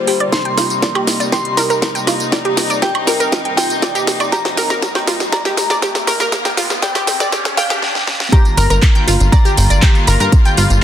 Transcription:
Already playing: string section D3 G3 A#3 F4, synth bell C5
0.07 synth arpeggio sound G4, open hi-hat
0.20 synth arpeggio sound D5, closed hi-hat
0.32 string section C3 D#4, synth bell C6, kick, snare, closed hi-hat, tambourine, riser
0.45 synth arpeggio sound G5, closed hi-hat
0.58 synth arpeggio sound F4, snare, open hi-hat, tambourine
0.70 closed hi-hat, tambourine
0.82 synth arpeggio sound D5, kick, snare, closed hi-hat, tambourine
0.95 synth arpeggio sound G4, closed hi-hat, high woodblock
1.07 snare, open hi-hat, tambourine
1.20 synth arpeggio sound D5, closed hi-hat, tambourine
1.32 synth arpeggio sound G4, synth bell C6, kick, snare, closed hi-hat, tambourine
1.45 closed hi-hat
1.57 synth arpeggio sound A#4, snare, open hi-hat, tambourine
1.70 synth arpeggio sound A#4, closed hi-hat, tambourine
1.82 kick, snare, closed hi-hat, tambourine
1.95 synth arpeggio sound G5, closed hi-hat, tambourine
2.07 synth arpeggio sound F4, snare, open hi-hat, tambourine, high woodblock
2.20 closed hi-hat, tambourine
2.32 synth arpeggio sound D5, kick, snare, closed hi-hat, tambourine
2.45 synth arpeggio sound G4, closed hi-hat
2.57 snare, open hi-hat, tambourine
2.70 synth arpeggio sound D5, closed hi-hat, tambourine
2.82 synth arpeggio sound G4, synth bell G5, kick, snare, closed hi-hat, tambourine
2.95 closed hi-hat, high woodblock
3.07 synth arpeggio sound A#4, snare, open hi-hat, tambourine
3.20 synth arpeggio sound A#4, closed hi-hat, tambourine
3.32 kick, snare, closed hi-hat, tambourine
3.45 synth arpeggio sound G5, closed hi-hat
3.57 synth arpeggio sound F4, synth bell G5, snare, open hi-hat, tambourine
3.70 closed hi-hat, tambourine
3.82 synth arpeggio sound D5, kick, snare, closed hi-hat, tambourine
3.95 synth arpeggio sound G4, closed hi-hat, tambourine
4.07 snare, open hi-hat, tambourine
4.20 synth arpeggio sound D5, closed hi-hat, tambourine, high woodblock
4.32 synth arpeggio sound G4, synth bell A#5, kick, snare, closed hi-hat, tambourine
4.45 snare, closed hi-hat
4.57 synth arpeggio sound A#4, snare, open hi-hat, tambourine
4.70 synth arpeggio sound A#4, snare, tambourine
4.82 kick, snare, closed hi-hat, tambourine
4.95 synth arpeggio sound G5, snare, closed hi-hat, high woodblock
5.07 synth arpeggio sound F4, snare, open hi-hat, tambourine
5.20 snare, closed hi-hat, tambourine
5.32 synth arpeggio sound D5, synth bell A#5, kick, snare, closed hi-hat, tambourine
5.45 synth arpeggio sound G4, snare, closed hi-hat
5.57 snare, open hi-hat, tambourine
5.70 synth arpeggio sound D5, snare, closed hi-hat, tambourine
5.82 synth arpeggio sound G4, kick, snare, closed hi-hat, tambourine
5.95 snare, closed hi-hat, tambourine
6.07 synth arpeggio sound A#4, snare, open hi-hat, tambourine, high woodblock
6.20 synth arpeggio sound A#4, snare, closed hi-hat, tambourine
6.32 kick, snare, closed hi-hat, tambourine
6.45 synth arpeggio sound G5, snare, closed hi-hat, tambourine
6.57 synth arpeggio sound F4, snare, open hi-hat, tambourine
6.70 snare, tambourine
6.82 synth arpeggio sound D5, synth bell G5, kick, snare, closed hi-hat, tambourine
6.95 synth arpeggio sound G4, snare, closed hi-hat, tambourine, high woodblock
7.07 snare, open hi-hat, tambourine
7.20 synth arpeggio sound D5, snare, closed hi-hat, tambourine
7.32 synth arpeggio sound G4, kick, snare, closed hi-hat, tambourine
7.45 snare, closed hi-hat, tambourine
7.57 synth bell F5, synth arpeggio sound G5, snare, open hi-hat, tambourine
7.70 synth arpeggio sound G4, snare, closed hi-hat, tambourine
7.82 snare
7.95 snare
8.07 snare
8.20 snare
8.32 string section D3 G3 A#3 F4, synth arpeggio sound G4 G5, synth bell A#5, kick, closed hi-hat, tambourine
8.45 closed hi-hat, tambourine
8.57 analog synth bass G1, synth arpeggio sound A#4 A#5, open hi-hat, tambourine
8.70 analog synth bass G1, synth arpeggio sound A#4 A#5, closed hi-hat, tambourine
8.82 kick, clap, closed hi-hat, tambourine
8.95 synth arpeggio sound G5 G6, closed hi-hat
9.07 analog synth bass G1, synth arpeggio sound F4 F5, open hi-hat, tambourine
9.20 analog synth bass G1, closed hi-hat, tambourine
9.32 synth arpeggio sound D5 D6, synth bell A#5, kick, closed hi-hat, tambourine
9.45 synth arpeggio sound G4 G5, closed hi-hat, tambourine
9.57 analog synth bass G1, open hi-hat, tambourine
9.70 analog synth bass G1, synth arpeggio sound D5 D6, closed hi-hat, tambourine
9.82 synth arpeggio sound G4 G5, kick, clap, closed hi-hat, tambourine
9.95 closed hi-hat, tambourine
10.07 analog synth bass G1, synth arpeggio sound A#4 A#5, open hi-hat, tambourine
10.20 analog synth bass G2, synth arpeggio sound A#4 A#5, closed hi-hat, tambourine
10.32 kick, closed hi-hat, tambourine
10.45 synth arpeggio sound G5 G6, closed hi-hat, tambourine
10.57 analog synth bass G1, synth arpeggio sound F4 F5, open hi-hat, tambourine
10.70 analog synth bass G1, closed hi-hat, tambourine

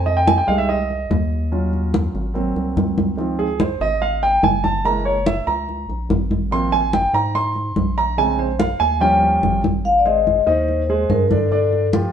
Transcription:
Already playing: analog synth bass F2
0.06 grand piano D#5, high conga
0.17 grand piano G5
0.27 grand piano G#5, high conga
0.38 grand piano G5
0.47 analog synth bass C2, grand piano G3 G#3 D#4 F5, high conga
0.58 grand piano E5
0.69 grand piano D#5, high conga
0.90 high conga
1.10 analog synth bass D#2, high conga
1.52 grand piano F#3 C#4 F4, high conga
1.73 high conga
1.94 high conga
2.15 analog synth bass G#1, high conga
2.34 grand piano F#3 A#3 C4, high conga
2.56 analog synth bass C2, high conga
2.76 analog synth bass C#2, high conga
2.98 high conga
3.17 grand piano D#3 F3 C4, high conga
3.39 grand piano G#4, high conga
3.60 grand piano C5, high conga
3.80 analog synth bass G#1, grand piano D#5, high conga
4.02 grand piano F5, high conga
4.23 grand piano G5, high conga
4.43 analog synth bass F#1, grand piano G#5, high conga
4.64 grand piano A5, high conga
4.85 grand piano E3 G#3 A#3 A#5, high conga
5.05 grand piano C#5, high conga
5.26 grand piano E5, high conga
5.47 analog synth bass C#2, grand piano A#5, high conga
5.69 high conga
5.89 analog synth bass A#1, high conga
6.09 analog synth bass G#1, high conga
6.31 high conga
6.51 grand piano F3 A#3 C4 C6, high conga
6.72 grand piano G#5, high conga
6.93 grand piano G5, high conga
7.13 analog synth bass G#2, grand piano A#5, high conga
7.35 grand piano C6, high conga
7.55 high conga
7.76 analog synth bass A#1, high conga
7.98 grand piano A#5
8.18 grand piano C#3 G#3 C4 G#5, high conga
8.39 grand piano C5, high conga
8.59 grand piano F5, high conga
8.80 analog synth bass D#2, grand piano G#5, high conga
9.00 grand piano F3 G3 C#4 G5, high conga
9.22 high conga
9.43 analog synth bass G#1, high conga
9.64 high conga
9.85 vibraphone F5, high conga
9.99 vibraphone D5
10.05 grand piano G#3 G#4 C5, vibraphone D#5, high conga
10.27 high conga
10.46 analog synth bass D#2, grand piano D#3 D#4 D#5, vibraphone C5, high conga
10.68 high conga
10.89 grand piano G#3 G#4 C5, high conga
11.10 analog synth bass G2, vibraphone A#4, high conga
11.30 grand piano D3 D4 D5, vibraphone A4, high conga
11.51 grand piano D3 D4 D5, high conga
11.73 high conga
11.93 grand piano F3 F4 G4, high conga

